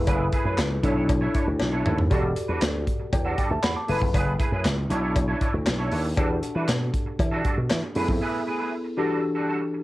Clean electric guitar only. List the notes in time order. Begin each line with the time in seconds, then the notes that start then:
0.07 A3 E4 G#4 B4
0.32 A3 E4 G#4 B4
0.45 A3 E4 G#4 B4
0.58 muted clean electric guitar stroke
0.70 muted clean electric guitar stroke
0.83 D4 E4 A4 C#5
0.96 D4 E4 A4 C#5
1.09 muted clean electric guitar stroke
1.21 D4 E4 A4 C#5
1.34 D4 E4 A4 C#5
1.47 muted clean electric guitar stroke
1.59 muted clean electric guitar stroke
1.72 D4 E4 A4 C#5
1.85 D4 E4 A4 C#5
1.97 muted clean electric guitar stroke
2.10 G3 D4 F#4 A4
2.23 muted clean electric guitar stroke
2.36 muted clean electric guitar stroke
2.48 G3 D4 F#4 B4
2.61 muted clean electric guitar stroke
2.74 muted clean electric guitar stroke
2.99 muted clean electric guitar stroke
3.12 muted clean electric guitar stroke
3.25 G3 D4 F#4 A4
3.37 G3 D4 F#4 A4
3.50 muted clean electric guitar stroke
3.75 muted clean electric guitar stroke
3.88 A3 E4 G#4 B4
4.01 muted clean electric guitar stroke
4.13 A3 E4 G#4 B4
4.39 A3 E4 G#4 B4
4.51 A3 E4 G#4 B4
4.65 muted clean electric guitar stroke
4.77 muted clean electric guitar stroke
4.90 D4 E4 A4 C#5
5.03 D4 E4 A4 C#5
5.16 muted clean electric guitar stroke
5.28 D4 E4 A4 C#5
5.41 D4 E4 A4 C#5
5.54 muted clean electric guitar stroke
5.66 muted clean electric guitar stroke
5.79 D4 E4 A4 C#5
5.91 D4 E4 A4 C#5
6.04 muted clean electric guitar stroke
6.17 G3 D4 F#4 A4
6.30 muted clean electric guitar stroke
6.43 muted clean electric guitar stroke
6.55 G3 D4 F#4 B4
6.68 muted clean electric guitar stroke
6.81 muted clean electric guitar stroke
7.06 muted clean electric guitar stroke
7.19 muted clean electric guitar stroke
7.31 G3 D4 F#4 A4
7.44 G3 D4 F#4 A4
7.57 muted clean electric guitar stroke
7.83 muted clean electric guitar stroke
7.95 A3 E4 G#4 B4
8.08 muted clean electric guitar stroke
8.21 A3 E4 G#4 B4
8.46 A3 E4 G#4 B4
8.59 A3 E4 G#4 B4
8.71 muted clean electric guitar stroke
8.84 muted clean electric guitar stroke
8.97 G3 D4 F#4 A4
9.09 G3 D4 F#4 A4
9.22 muted clean electric guitar stroke
9.35 G3 D4 F#4 A4
9.48 G3 D4 F#4 A4
9.61 muted clean electric guitar stroke
9.73 muted clean electric guitar stroke